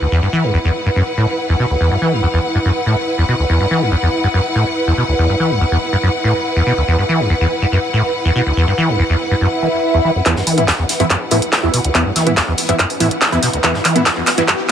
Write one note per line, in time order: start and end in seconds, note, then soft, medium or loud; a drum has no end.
0.00 0.07 D2 medium
0.00 14.71 E4 medium
0.00 14.71 B4 medium
0.00 14.71 F#5 medium
0.12 0.21 E2 loud
0.22 0.28 G2 medium
0.33 0.45 E3 loud
0.44 0.52 G2 medium
0.54 0.57 E2 loud
0.65 0.70 E2 loud
0.86 0.89 G2 loud
0.96 1.02 F#2 loud
1.17 1.26 A2 loud
1.49 1.55 E2 loud
1.59 1.65 B2 loud
1.70 1.76 D2 medium
1.81 1.90 E2 loud
1.91 1.97 G2 medium
2.02 2.14 E3 loud
2.13 2.21 G2 medium
2.23 2.26 E2 loud
2.34 2.39 E2 loud
2.55 2.58 G2 loud
2.65 2.71 F#2 loud
2.86 2.95 A2 loud
3.18 3.24 E2 loud
3.28 3.34 B2 loud
3.39 3.45 D2 medium
3.50 3.59 E2 loud
3.60 3.66 G2 medium
3.71 3.83 E3 medium
3.82 3.90 G2 medium
3.92 3.95 E2 loud
4.03 4.08 E2 loud
4.24 4.27 G2 loud
4.34 4.40 F#2 loud
4.55 4.64 A2 loud
4.87 4.93 E2 loud
4.98 5.04 B2 loud
5.08 5.14 D2 medium
5.19 5.28 E2 loud
5.29 5.35 G2 medium
5.40 5.52 E3 loud
5.51 5.59 G2 medium
5.61 5.65 E2 loud
5.72 5.77 E2 loud
5.93 5.96 G2 loud
6.03 6.09 F#2 loud
6.24 6.33 A2 loud
6.56 6.62 E2 loud
6.67 6.73 B2 loud
6.77 6.83 D2 medium
6.88 6.97 E2 loud
6.99 7.04 G2 medium
7.09 7.21 E3 loud
7.20 7.28 G2 medium
7.30 7.34 E2 loud
7.41 7.46 E2 loud
7.62 7.65 G2 loud
7.72 7.78 F#2 loud
7.93 8.02 A2 loud
8.25 8.31 E2 loud
8.36 8.42 B2 loud
8.46 8.52 D2 medium
8.57 8.66 E2 loud
8.68 8.73 G2 medium
8.78 8.90 E3 loud
8.89 8.97 G2 medium
8.99 9.03 E2 loud
9.10 9.15 E2 loud
9.31 9.34 G2 loud
9.41 9.47 F#2 loud
9.41 swell medium
9.62 9.68 E3 medium
9.94 10.00 E2 loud
10.05 10.11 E3 loud
10.15 10.21 F#2 medium
10.26 10.35 E2 loud
10.26 10.35 E3 medium
10.26 10.35 B3 medium
10.26 10.35 E4 medium
10.26 kick loud
10.26 clap soft
10.26 closed hi-hat medium
10.26 riser medium
10.36 10.42 G2 medium
10.36 snare soft
10.47 10.59 E3 loud
10.47 closed hi-hat medium
10.47 open hi-hat loud
10.58 10.66 G2 medium
10.58 10.63 E3 medium
10.58 10.63 B3 medium
10.58 10.63 E4 medium
10.58 closed hi-hat medium
10.68 10.72 E2 loud
10.68 kick loud
10.68 snare loud
10.68 clap soft
10.68 closed hi-hat medium
10.79 10.84 E2 loud
10.89 snare medium
10.89 closed hi-hat medium
10.89 open hi-hat loud
11.00 11.03 G2 loud
11.00 11.06 E3 loud
11.00 11.06 B3 medium
11.00 11.06 E4 loud
11.00 closed hi-hat medium
11.00 closed hi-hat soft
11.10 11.16 F#2 loud
11.10 kick loud
11.10 clap medium
11.10 closed hi-hat medium
11.31 11.40 A2 loud
11.31 11.37 E3 medium
11.31 11.37 B3 medium
11.31 11.37 E4 medium
11.31 kick medium
11.31 closed hi-hat medium
11.31 open hi-hat loud
11.42 closed hi-hat medium
11.52 kick loud
11.52 snare loud
11.52 clap medium
11.52 closed hi-hat medium
11.63 11.69 E2 loud
11.63 11.69 E3 medium
11.63 11.69 B3 medium
11.63 11.69 E4 loud
11.74 11.80 B2 loud
11.74 closed hi-hat medium
11.74 open hi-hat loud
11.84 11.90 D2 medium
11.84 closed hi-hat medium
11.95 12.04 E2 loud
11.95 12.04 E3 medium
11.95 12.04 B3 medium
11.95 12.04 E4 medium
11.95 kick loud
11.95 clap medium
11.95 closed hi-hat medium
12.06 12.11 G2 medium
12.16 12.28 E3 loud
12.16 snare medium
12.16 closed hi-hat medium
12.16 open hi-hat loud
12.27 12.35 G2 medium
12.27 12.32 E3 medium
12.27 12.32 B3 medium
12.27 12.32 E4 medium
12.27 closed hi-hat medium
12.36 12.41 E2 loud
12.36 kick loud
12.36 snare loud
12.36 clap medium
12.36 closed hi-hat medium
12.48 12.53 E2 loud
12.58 open hi-hat medium
12.58 open hi-hat loud
12.69 12.72 G2 loud
12.69 12.75 E3 medium
12.69 12.75 B3 medium
12.69 12.75 E4 loud
12.69 closed hi-hat medium
12.69 closed hi-hat soft
12.79 12.85 F#2 loud
12.79 kick loud
12.79 clap medium
12.79 closed hi-hat medium
12.90 open hi-hat medium
13.00 13.09 A2 loud
13.00 13.06 E3 medium
13.00 13.06 B3 medium
13.00 13.06 E4 medium
13.00 closed hi-hat medium
13.00 open hi-hat loud
13.11 closed hi-hat medium
13.21 kick loud
13.21 snare loud
13.21 clap medium
13.21 closed hi-hat medium
13.32 13.38 E2 loud
13.32 13.38 E3 medium
13.32 13.38 B3 medium
13.32 13.38 E4 loud
13.32 closed hi-hat soft
13.42 13.49 B2 loud
13.42 snare medium
13.42 closed hi-hat medium
13.42 open hi-hat loud
13.53 13.59 D2 medium
13.53 closed hi-hat medium
13.63 13.73 E2 loud
13.63 13.73 E3 medium
13.63 13.73 B3 medium
13.63 13.73 E4 medium
13.63 kick loud
13.63 clap medium
13.63 closed hi-hat medium
13.74 13.80 G2 medium
13.74 snare soft
13.85 13.97 E3 loud
13.85 clap medium
13.85 closed hi-hat medium
13.85 open hi-hat loud
13.96 14.04 G2 medium
13.96 14.01 E3 medium
13.96 14.01 B3 medium
13.96 14.01 E4 medium
13.96 closed hi-hat medium
14.06 14.10 E2 loud
14.06 kick loud
14.06 snare loud
14.06 clap medium
14.06 closed hi-hat medium
14.17 14.23 E2 loud
14.26 snare medium
14.26 clap medium
14.26 closed hi-hat medium
14.26 open hi-hat loud
14.37 14.41 G2 loud
14.37 14.44 E3 medium
14.37 14.44 B3 medium
14.37 14.44 E4 loud
14.37 closed hi-hat soft
14.37 closed hi-hat medium
14.48 14.54 F#2 loud
14.48 kick loud
14.48 clap medium
14.48 closed hi-hat medium